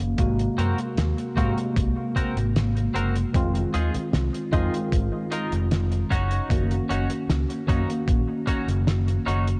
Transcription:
Already playing: D#3 A#3 C#4 F#4
0.00 F#1, closed hi-hat
0.17 G#1 C3 G#3 A#3 F#4, kick, closed hi-hat
0.39 closed hi-hat
0.58 F#2 C4 F#4 A#4, closed hi-hat
0.78 closed hi-hat
0.97 D#2, snare, closed hi-hat
1.18 closed hi-hat
1.36 G#2 C3 G#3 A#3 C4 F#4 A#4, kick, closed hi-hat
1.58 closed hi-hat
1.76 C2, kick, closed hi-hat
2.16 C4 F#4 A#4, kick, closed hi-hat
2.36 G#1, closed hi-hat
2.56 snare, closed hi-hat
2.77 closed hi-hat
2.95 F#1 C4 F#4 A#4, closed hi-hat
3.16 closed hi-hat
3.33 F1 D#3 G#3 C4 F4, kick, closed hi-hat
3.55 closed hi-hat
3.74 D#2 D#4 F4 G#4, closed hi-hat
3.94 muted fingered electric bass stroke, closed hi-hat
4.13 C2, snare, closed hi-hat
4.34 closed hi-hat
4.52 F2 D#3 G#3 C4 D#4 F4 G#4, kick, closed hi-hat
4.74 closed hi-hat
4.92 G#1, kick, closed hi-hat
5.32 D#4 F4 A#4, closed hi-hat
5.52 F1, closed hi-hat
5.71 snare, closed hi-hat
5.92 closed hi-hat
6.11 F#1 C#4 D#4 F#4, kick, closed hi-hat
6.31 closed hi-hat
6.49 F#1 D#3 A#3 C#4 F#4, kick, closed hi-hat
6.71 closed hi-hat
6.89 F#1 C#4 D#4 F#4, closed hi-hat
7.10 closed hi-hat
7.29 C#2, snare, closed hi-hat
7.50 closed hi-hat
7.67 F#2 D#3 A#3 C#4 D#4 F#4, kick, closed hi-hat
7.90 closed hi-hat
8.08 A#1, kick, closed hi-hat
8.47 C#4 D#4 F#4, kick, closed hi-hat
8.68 F#1, closed hi-hat
8.87 snare, closed hi-hat
9.08 closed hi-hat
9.26 F#1 C#4 D#4 F#4, closed hi-hat
9.48 closed hi-hat

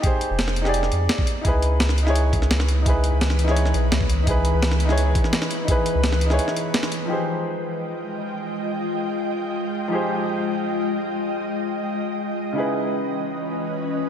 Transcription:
Already playing: G4 G#4 C5 D5
0.00 D#4 G4, kick, closed hi-hat
0.04 G#4 C5
0.21 closed hi-hat
0.30 F1
0.39 snare, closed hi-hat
0.48 snare
0.56 closed hi-hat
0.62 D#4 G4, snare
0.66 G#4 D5
0.74 closed hi-hat
0.83 snare
0.92 F2, closed hi-hat
1.09 snare, closed hi-hat
1.18 kick
1.27 E3 B4, closed hi-hat
1.41 C#2 D#4 E4, kick, closed hi-hat
1.46 G#4 B4
1.62 closed hi-hat
1.80 snare, closed hi-hat
1.89 snare
1.98 closed hi-hat
2.03 D#4 E4, snare
2.08 G#4 C#5
2.15 closed hi-hat
2.33 kick, closed hi-hat
2.42 snare
2.51 snare, closed hi-hat
2.60 snare
2.69 closed hi-hat
2.82 D#4 E4, kick, closed hi-hat
2.87 G#4 B4
3.04 closed hi-hat
3.12 C#2
3.21 snare, closed hi-hat
3.30 snare
3.39 closed hi-hat
3.44 D#4 E4, snare
3.49 G#4 C#5
3.57 closed hi-hat
3.65 snare
3.74 B1, closed hi-hat
3.92 C#2, snare, closed hi-hat
4.01 kick
4.10 closed hi-hat
4.24 D#4 E4, kick, closed hi-hat
4.28 G#4 B4
4.45 closed hi-hat
4.54 C#2
4.62 snare, closed hi-hat
4.71 snare
4.80 closed hi-hat
4.85 D#4 E4, snare
4.90 G#4 C#5
4.98 closed hi-hat
5.15 kick, closed hi-hat
5.24 snare
5.33 snare, closed hi-hat
5.42 snare
5.51 closed hi-hat
5.64 D#4 E4, kick, closed hi-hat
5.69 G#4 B4
5.86 closed hi-hat
5.95 C#2
6.04 snare, closed hi-hat
6.12 snare
6.21 closed hi-hat
6.26 D#4 E4, snare
6.31 G#4 C#5
6.39 closed hi-hat
6.48 snare
6.56 closed hi-hat
6.74 snare, closed hi-hat
6.83 snare
6.92 closed hi-hat
7.06 F3 G#3 D#4 F4 G4 D#5 G5
7.11 G#4 C5
9.88 F3 D#4 G4
9.93 G#4 C5
12.52 C#3 E3 C#4 D#4 E4 B4
12.58 G#4 B4

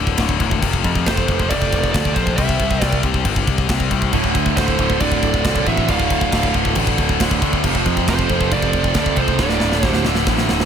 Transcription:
Already playing: D1 D2 A2 D3
0.07 kick
0.17 D1 D2 A2 D3, kick, snare, crash
0.29 kick
0.40 E1 D2 A2 D3, kick, crash
0.51 kick
0.62 F1 F2 C3 F3, kick, crash
0.73 kick
0.84 F2, kick, crash
0.95 kick
1.06 F1 F2 C3 F3 A4 C5, kick, snare, crash
1.17 kick
1.28 F1 F2 C3 F3, kick, crash
1.39 kick
1.49 F1 F2 C3 F3 A4 D5, kick, crash
1.62 kick
1.73 F1, kick, crash
1.84 kick
1.92 D2 F2 C3 F3 A4 D5, kick, snare, crash
2.05 kick
2.13 A#1 F2 C3 F3 A4 C5, kick, crash
2.27 kick
2.36 C2 C3 G3 C4 C5 E5, kick, crash
2.49 kick
2.60 C2, kick, crash
2.71 kick
2.81 C2 C3 G3 C4 A#4 D5, kick, snare, crash
2.92 kick
3.03 C2 C3 G3 C4, kick, crash
3.14 kick
3.25 G1 C3 G3 C4, kick, crash
3.36 kick
3.47 C2, kick, crash
3.58 kick
3.68 C2 C3 G3 C4, kick, snare, crash
3.80 kick
3.91 C2 C3 G3 C4, kick, crash
4.02 kick
4.12 D1 D2 A2 D3, kick, crash
4.24 kick
4.35 D2, kick, crash
4.46 kick
4.56 D1 D2 A2 D3 A4 C5, kick, snare, crash
4.68 kick
4.78 D1 D2 A2 D3, kick, crash
4.90 kick
5.00 D1 D2 A2 D3 A4 D5, kick, crash
5.12 kick
5.23 D1, kick, crash
5.34 kick
5.44 C2 D2 A2 D3, kick, snare, crash
5.56 kick
5.66 A1 D2 A2 D3 C5 E5, kick, crash
5.77 kick
5.88 D1 D2 A2 D3 D5 F5, kick, crash
6.00 kick
6.10 D1, kick, crash
6.21 kick
6.32 D1 D2 A2 D3, kick, snare, crash
6.43 kick
6.54 D1 D2 A2 D3, kick, crash
6.65 kick
6.75 A1 D2 A2 D3, kick, crash
6.87 kick
6.98 D1, kick, crash
7.09 kick
7.20 D1 D2 A2 D3, kick, snare, crash
7.31 kick
7.42 D2 A2 D3, kick, crash
7.53 kick
7.64 F1 F2 C3 F3, kick, crash
7.75 kick
7.85 F2, kick, crash
7.97 kick
8.08 F1 F2 C3 F3 A4 C5, kick, snare, crash
8.19 kick
8.29 F1 F2 C3 F3, kick, crash
8.41 kick
8.51 F1 F2 C3 F3 A4 D5, kick, crash
8.62 kick
8.73 F1, kick, crash
8.84 kick
8.94 D2 F2 C3 F3 A4 D5, kick, snare, crash
9.06 kick
9.16 C2 F2 C3 F3 A4 C5, kick, crash
9.28 kick
9.39 D1 D2 A2 D3 A4 D5, kick, snare
9.49 snare
9.60 D1, snare
9.72 snare
9.83 D1 D2 A2 D3, kick, snare
9.87 G4 C5
9.93 snare
10.05 D1 D2 A2 D3, snare
10.15 snare
10.27 A1 D2 A2 D3, kick, snare
10.38 snare
10.49 D1, snare
10.60 snare

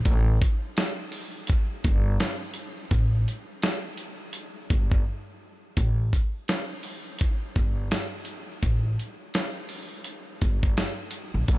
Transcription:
0.05 A1, kick, closed hi-hat
0.42 kick, closed hi-hat
0.77 snare, closed hi-hat
1.12 open hi-hat
1.47 kick, closed hi-hat
1.84 G1, kick, closed hi-hat
2.20 snare, closed hi-hat
2.54 closed hi-hat
2.91 A1, kick, closed hi-hat
3.28 closed hi-hat
3.62 snare, closed hi-hat
3.97 closed hi-hat
4.33 closed hi-hat
4.70 G1, kick, closed hi-hat
4.92 kick
5.77 A1, kick, closed hi-hat
6.13 kick, closed hi-hat
6.48 snare, closed hi-hat
6.83 open hi-hat
7.19 kick, closed hi-hat
7.56 G1, kick, closed hi-hat
7.91 snare, closed hi-hat
8.25 closed hi-hat
8.62 A1, kick, closed hi-hat
8.99 closed hi-hat
9.34 snare, closed hi-hat
9.69 open hi-hat
10.04 closed hi-hat
10.41 G1, kick, closed hi-hat
10.63 kick
10.77 snare, closed hi-hat
11.11 closed hi-hat
11.34 A#1
11.48 A1, kick, closed hi-hat

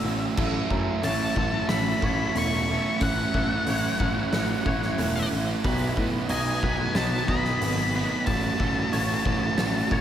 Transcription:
Already playing: F#3 A3 E4 A4 C#5
0.04 A1 A3 C#4 F#4 A4
0.36 A1 A3 C#4 E4 A4, kick, crash
0.70 F#2 A3 C#4 E4 A4, kick
1.02 A1 A3 C#4 E4 A4 C#5 A5, open hi-hat
1.35 A1 A3 C#4 E4 A4, kick
1.68 A1 A3 C#4 E4 A4 B5, snare, open hi-hat
2.01 A1 A3 C#4 E4 A4 C#5, kick
2.35 E1 A3 C#4 E4 A4 C#6, open hi-hat
2.68 A3 C#4 E4 A4
3.00 A1 A3 C#4 E4 A4 F#5, kick, open hi-hat
3.32 A1 A3 C#4 E4 A4, kick
3.66 A1 A3 C#4 E4 A4 C#5, open hi-hat
4.00 A1 A3 C#4 E4 A4, kick
4.31 A1 A3 C#4 E4 A4, snare, open hi-hat
4.64 A1 A3 C#4 E4 A4 C#5, kick
4.82 snare
4.98 E1 A3 C#4 E4 A4, open hi-hat
5.31 A1 A3 C#4 E4 A4
5.63 B1 B2 D#3 F#3 A3 B3 D#4 F#4 B4, kick, open hi-hat
5.96 A2 B2 F#3 B3 D#4 F#4, kick
6.28 B1 B2 F#3 B3 D#4 F#4 D#5 G#5, open hi-hat
6.63 B1 B2 F#3 B3 D#4 F#4 B4, kick
6.95 B1 B2 F#3 B3 D#4 F#4 B4 A5, snare, open hi-hat
7.28 B1 B2 F#3 B3 D#4 F#4 D#5 B5, kick
7.45 snare
7.61 G#1 B2 F#3 B3 D#4 F#4, open hi-hat
7.93 B2 F#3 B3 D#4 F#4 B4
8.25 A1 E3 F#3 A3 C#4 F#4 A4 A5, kick, open hi-hat
8.58 A1 A3 C#4 F#4 A4, kick
8.91 A1 A3 C#4 F#4 A4 C#5, open hi-hat
9.24 A1 A3 C#4 F#4 A4, kick
9.56 A1 A3 C#4 F#4 A4, snare, open hi-hat
9.90 A1 A3 C#4 F#4 A4 C#5, kick

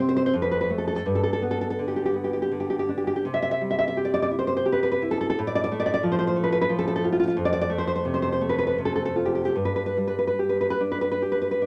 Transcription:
Already playing: C3 G3 G4
0.00 C4
0.09 C5
0.17 C5
0.26 C5
0.33 F2
0.42 B4
0.51 B4
0.61 B4
0.70 A3
0.78 A4
0.87 A4
0.96 A4
1.06 G2
1.15 A4
1.23 A4
1.33 A4
1.42 B3
1.51 A4
1.61 A4
1.70 A4
1.79 D3
1.88 G4
1.96 G4
2.06 G4
2.14 B3
2.24 G4
2.33 G4
2.42 G4
2.52 D3
2.60 G4
2.70 G4
2.79 G4
2.89 D4
2.98 G4
3.07 G4
3.16 G4
3.25 C3
3.34 E5
3.42 E5
3.51 E5
3.61 G3
3.71 E5
3.79 E5
3.88 E5
3.97 G4
4.05 D5
4.14 D5
4.22 D5
4.31 E4
4.39 C5
4.47 C5
4.57 C5
4.66 G4
4.72 B4
4.83 B4
4.92 B4
5.02 E4
5.11 A4
5.21 A4
5.30 A4
5.39 A2
5.47 D5
5.55 D5
5.64 D5
5.72 A3
5.80 D5
5.86 D5
5.94 D5
6.03 F3
6.12 C5
6.19 C5
6.27 C5
6.36 A3
6.44 B4
6.52 B4
6.61 B4
6.69 F3
6.79 A4
6.88 A4
6.96 A4
7.04 F4
7.12 F4
7.20 F4
7.28 F4
7.37 F2
7.45 D5
7.53 D5
7.61 D5
7.70 A3
7.78 C5
7.87 C5
7.96 C5
8.05 C3
8.14 C5
8.22 C5
8.32 C5
8.41 A3
8.49 B4
8.59 B4
8.67 B4
8.78 C3
8.85 A4
8.96 A4
9.05 A4
9.16 F4
9.26 G4
9.35 G4
9.45 G4
9.55 G2
9.65 B4
9.76 B4
9.86 B4
9.97 G3
10.07 B4
10.19 B4
10.27 B4
10.39 G4
10.49 B4
10.61 B4
10.70 B4
10.81 D4
10.92 B4
11.01 B4
11.11 B4
11.22 G4
11.32 B4
11.42 B4
11.51 B4
11.62 D4

